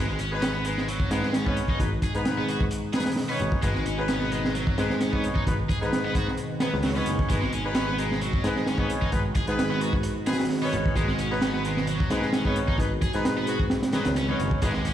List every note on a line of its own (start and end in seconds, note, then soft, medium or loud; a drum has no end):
0.00 1.04 G#1 medium
0.00 14.58 B2 medium
0.00 14.58 D#3 medium
0.00 14.58 G#3 medium
0.00 7.28 D#4 medium
0.08 0.18 G#3 medium
0.08 snare soft
0.19 0.31 C#4 medium
0.19 closed hi-hat medium
0.32 0.63 B3 loud
0.32 0.63 D#4 medium
0.32 0.63 G#4 medium
0.32 0.63 B4 loud
0.42 0.53 C#4 medium
0.42 snare loud
0.42 closed hi-hat medium
0.54 0.64 B3 loud
0.54 snare soft
0.65 0.87 G#3 medium
0.65 0.82 B3 medium
0.65 0.82 D#4 medium
0.65 0.82 G#4 medium
0.65 0.82 B4 medium
0.65 closed hi-hat medium
0.78 snare medium
0.88 1.10 F#3 medium
0.88 closed hi-hat medium
1.00 kick medium
1.11 1.61 G#2 medium
1.11 1.33 G#3 medium
1.11 1.28 B3 medium
1.11 1.28 D#4 medium
1.11 1.28 G#4 medium
1.11 1.28 B4 medium
1.11 snare medium
1.11 closed hi-hat medium
1.23 snare medium
1.33 1.45 C#4 medium
1.33 snare loud
1.33 closed hi-hat medium
1.46 1.77 B3 medium
1.46 1.56 B3 medium
1.46 1.77 C#4 medium
1.46 1.77 D#4 medium
1.46 1.77 G#4 medium
1.46 1.77 C#5 loud
1.46 kick loud
1.57 closed hi-hat medium
1.68 1.78 D#4 medium
1.68 kick medium
1.80 2.07 G#1 loud
1.80 1.91 B3 medium
1.80 1.91 D#4 medium
1.80 1.91 G#4 medium
1.80 1.91 B4 loud
1.80 kick loud
1.80 closed hi-hat medium
2.02 2.12 G#4 medium
2.02 kick medium
2.02 closed hi-hat medium
2.15 3.10 G#2 medium
2.15 2.46 B3 loud
2.15 2.46 D#4 loud
2.15 2.46 G#4 medium
2.15 2.46 B4 loud
2.15 closed hi-hat soft
2.25 snare loud
2.25 closed hi-hat medium
2.38 2.48 B3 loud
2.38 snare soft
2.48 2.66 B3 medium
2.48 2.66 D#4 medium
2.48 2.60 F#4 medium
2.48 2.66 G#4 medium
2.48 2.66 B4 medium
2.48 closed hi-hat medium
2.60 kick loud
2.71 closed hi-hat medium
2.93 3.11 B3 medium
2.93 3.11 D#4 medium
2.93 3.03 G#4 medium
2.93 3.11 G#4 medium
2.93 3.11 B4 loud
2.93 snare medium
2.93 closed hi-hat medium
3.00 snare medium
3.00 closed hi-hat medium
3.06 snare medium
3.06 closed hi-hat medium
3.11 snare medium
3.11 closed hi-hat medium
3.16 snare loud
3.16 open hi-hat medium
3.29 3.40 B3 loud
3.29 3.60 B3 medium
3.29 3.60 C#4 medium
3.29 3.60 D#4 medium
3.29 3.60 G#4 medium
3.29 3.60 C#5 loud
3.40 3.55 G#1 medium
3.40 closed hi-hat medium
3.52 kick medium
3.62 4.71 G#1 loud
3.62 3.74 G#3 medium
3.62 3.74 B3 medium
3.62 3.74 D#4 medium
3.62 3.74 G#4 medium
3.62 3.74 B4 loud
3.62 kick loud
3.62 closed hi-hat medium
3.75 3.85 G#3 medium
3.75 snare soft
3.85 3.97 C#4 medium
3.85 closed hi-hat medium
3.98 4.29 B3 loud
3.98 4.29 D#4 loud
3.98 4.29 G#4 medium
3.98 4.29 B4 loud
4.08 4.20 C#4 medium
4.08 snare loud
4.08 closed hi-hat medium
4.21 4.31 B3 loud
4.21 snare soft
4.31 4.53 G#3 medium
4.31 4.49 B3 medium
4.31 4.49 D#4 medium
4.31 4.49 G#4 medium
4.31 4.49 B4 medium
4.31 closed hi-hat medium
4.45 snare medium
4.55 4.76 F#3 medium
4.55 closed hi-hat medium
4.67 kick loud
4.77 5.28 G#2 medium
4.77 4.99 G#3 medium
4.77 4.95 B3 medium
4.77 4.95 D#4 medium
4.77 4.95 G#4 medium
4.77 4.94 B4 loud
4.77 snare medium
4.77 closed hi-hat medium
4.90 snare medium
5.01 5.12 C#4 medium
5.01 snare loud
5.01 closed hi-hat medium
5.13 5.44 B3 medium
5.13 5.23 B3 medium
5.13 5.44 C#4 medium
5.13 5.44 D#4 medium
5.13 5.44 G#4 medium
5.13 5.44 C#5 loud
5.13 kick loud
5.24 closed hi-hat medium
5.36 5.44 D#4 medium
5.36 kick medium
5.46 5.74 G#1 loud
5.46 5.58 B3 medium
5.46 5.57 D#4 medium
5.46 5.57 G#4 medium
5.46 5.57 B4 loud
5.46 kick loud
5.46 closed hi-hat medium
5.69 5.79 G#4 medium
5.69 kick loud
5.69 closed hi-hat medium
5.81 6.73 G#2 medium
5.81 6.12 B3 loud
5.81 6.12 D#4 medium
5.81 6.12 G#4 medium
5.81 6.12 B4 loud
5.81 closed hi-hat soft
5.93 snare loud
5.93 closed hi-hat medium
6.05 6.15 B3 loud
6.05 snare soft
6.15 6.32 B3 medium
6.15 6.32 D#4 medium
6.15 6.27 F#4 medium
6.15 6.32 G#4 medium
6.15 6.32 B4 medium
6.15 kick loud
6.15 closed hi-hat medium
6.28 snare soft
6.37 closed hi-hat medium
6.60 6.72 B3 loud
6.60 6.78 B3 medium
6.60 6.78 D#4 medium
6.60 6.78 G#4 medium
6.60 6.78 B4 loud
6.60 snare loud
6.60 closed hi-hat medium
6.74 7.00 C#2 loud
6.74 snare soft
6.83 6.89 F#3 medium
6.83 snare loud
6.83 open hi-hat medium
6.96 7.06 B3 medium
6.96 7.27 B3 medium
6.96 7.27 C#4 medium
6.96 7.27 D#4 medium
6.96 7.27 G#4 medium
6.96 7.27 C#5 loud
7.06 7.21 F#1 medium
7.06 closed hi-hat medium
7.19 kick medium
7.29 8.38 G#1 loud
7.29 7.40 G#3 medium
7.29 7.40 B3 medium
7.29 7.40 D#4 medium
7.29 14.61 F#4 medium
7.29 7.41 G#4 medium
7.29 7.41 B4 loud
7.29 kick loud
7.29 closed hi-hat medium
7.42 7.51 G#3 medium
7.42 snare soft
7.52 7.64 C#4 medium
7.52 closed hi-hat medium
7.64 7.95 B3 loud
7.64 7.95 D#4 loud
7.64 7.95 G#4 medium
7.64 7.95 B4 loud
7.75 7.86 C#4 medium
7.75 snare loud
7.75 closed hi-hat medium
7.87 7.98 B3 loud
7.87 snare soft
7.98 8.20 G#3 medium
7.98 8.15 B3 medium
7.98 8.15 D#4 medium
7.98 8.15 G#4 medium
7.98 8.15 B4 medium
7.98 closed hi-hat medium
8.12 snare medium
8.21 8.43 F#3 medium
8.21 closed hi-hat medium
8.33 kick medium
8.44 8.94 G#2 medium
8.44 8.66 G#3 medium
8.44 8.61 B3 medium
8.44 8.61 D#4 medium
8.44 8.61 G#4 medium
8.44 8.61 B4 loud
8.44 snare medium
8.44 closed hi-hat medium
8.56 snare medium
8.67 8.78 C#4 medium
8.67 snare loud
8.67 closed hi-hat medium
8.78 9.10 B3 medium
8.78 8.89 B3 loud
8.78 9.10 C#4 medium
8.78 9.10 D#4 medium
8.78 9.10 G#4 medium
8.78 9.10 C#5 loud
8.78 kick medium
8.90 closed hi-hat medium
9.02 9.10 D#4 medium
9.02 kick medium
9.12 9.40 G#1 medium
9.12 9.24 B3 medium
9.12 9.24 D#4 medium
9.12 9.24 G#4 medium
9.12 9.24 B4 loud
9.12 kick loud
9.12 closed hi-hat medium
9.35 9.45 G#4 medium
9.35 kick loud
9.35 closed hi-hat medium
9.47 10.43 G#2 medium
9.47 9.79 B3 loud
9.47 9.79 D#4 medium
9.47 9.79 G#4 medium
9.47 9.79 B4 loud
9.47 closed hi-hat soft
9.59 snare loud
9.59 closed hi-hat medium
9.70 9.81 B3 loud
9.70 snare soft
9.81 9.98 B3 medium
9.81 9.98 D#4 medium
9.81 9.93 F#4 medium
9.81 9.98 G#4 medium
9.81 9.98 B4 medium
9.81 closed hi-hat medium
9.93 kick medium
10.03 closed hi-hat medium
10.26 10.44 B3 medium
10.26 10.44 D#4 medium
10.26 10.44 G#4 medium
10.26 10.36 G#4 medium
10.26 10.44 B4 loud
10.26 snare loud
10.26 closed hi-hat medium
10.33 snare medium
10.33 closed hi-hat medium
10.40 snare loud
10.40 closed hi-hat medium
10.45 snare medium
10.45 closed hi-hat medium
10.50 snare loud
10.50 open hi-hat medium
10.62 10.93 B3 medium
10.62 10.73 B3 medium
10.62 10.93 C#4 medium
10.62 10.93 D#4 medium
10.62 10.93 G#4 medium
10.62 10.93 C#5 loud
10.73 10.88 G#1 medium
10.73 closed hi-hat medium
10.86 kick medium
10.96 12.03 G#1 loud
10.96 11.07 G#3 medium
10.96 11.07 B3 medium
10.96 11.07 D#4 medium
10.96 11.07 G#4 medium
10.96 11.07 B4 loud
10.96 kick loud
10.96 closed hi-hat medium
11.08 11.18 G#3 medium
11.08 snare soft
11.19 11.31 C#4 medium
11.19 closed hi-hat medium
11.31 11.62 B3 loud
11.31 11.62 D#4 medium
11.31 11.62 G#4 medium
11.31 11.62 B4 loud
11.41 11.53 C#4 medium
11.41 snare loud
11.41 closed hi-hat medium
11.54 11.64 B3 loud
11.54 snare soft
11.64 11.87 G#3 medium
11.64 11.82 B3 medium
11.64 11.82 D#4 medium
11.64 11.82 G#4 medium
11.64 11.82 B4 medium
11.64 closed hi-hat medium
11.77 snare medium
11.87 12.09 F#3 medium
11.87 closed hi-hat medium
12.00 kick loud
12.10 12.61 G#2 medium
12.10 12.32 G#3 medium
12.10 12.28 B3 medium
12.10 12.28 D#4 medium
12.10 12.27 G#4 medium
12.10 12.28 B4 loud
12.10 snare soft
12.10 closed hi-hat medium
12.22 snare medium
12.33 12.44 C#4 medium
12.33 snare loud
12.33 closed hi-hat medium
12.45 12.76 B3 medium
12.45 12.56 B3 loud
12.45 12.76 C#4 medium
12.45 12.76 D#4 medium
12.45 12.76 G#4 medium
12.45 12.76 C#5 loud
12.45 kick medium
12.56 closed hi-hat medium
12.68 12.76 D#4 medium
12.68 kick medium
12.78 13.06 G#1 loud
12.78 12.90 B3 medium
12.78 12.90 D#4 medium
12.78 12.90 G#4 medium
12.78 12.90 B4 loud
12.78 kick loud
12.78 closed hi-hat medium
13.02 13.11 G#4 medium
13.02 kick loud
13.02 closed hi-hat medium
13.13 14.05 G#2 medium
13.13 13.45 B3 loud
13.13 13.45 D#4 medium
13.13 13.45 G#4 medium
13.13 13.45 B4 loud
13.13 closed hi-hat soft
13.25 snare loud
13.25 closed hi-hat medium
13.36 13.47 B3 loud
13.36 snare soft
13.47 13.65 B3 medium
13.47 13.65 D#4 medium
13.47 13.59 F#4 medium
13.47 13.65 G#4 medium
13.47 13.65 B4 medium
13.47 closed hi-hat medium
13.60 kick medium
13.70 snare loud
13.70 closed hi-hat medium
13.70 swell medium
13.83 snare loud
13.83 closed hi-hat medium
13.93 14.03 F#3 medium
13.93 14.10 B3 medium
13.93 14.11 D#4 medium
13.93 14.11 G#4 medium
13.93 14.11 B4 loud
13.93 snare loud
13.93 closed hi-hat medium
14.05 14.33 C#2 medium
14.05 snare loud
14.05 closed hi-hat medium
14.15 14.26 C#4 medium
14.15 snare loud
14.15 closed hi-hat medium
14.28 14.37 F#3 medium
14.28 14.60 B3 medium
14.28 14.59 C#4 loud
14.28 14.60 D#4 medium
14.28 14.59 G#4 medium
14.28 14.59 C#5 loud
14.39 14.54 F#1 medium
14.39 closed hi-hat medium
14.51 kick medium
14.62 14.94 G#1 loud
14.62 14.94 D#3 medium
14.62 14.94 G#3 medium
14.62 14.73 G#3 medium
14.62 14.73 B3 medium
14.62 14.73 D#4 medium
14.62 14.94 D#4 medium
14.62 14.73 G#4 medium
14.62 14.73 B4 loud
14.62 kick loud
14.62 closed hi-hat medium
14.62 crash medium
14.62 sub drop medium
14.73 14.84 G#3 medium
14.73 snare soft
14.85 14.94 C#4 medium
14.85 closed hi-hat medium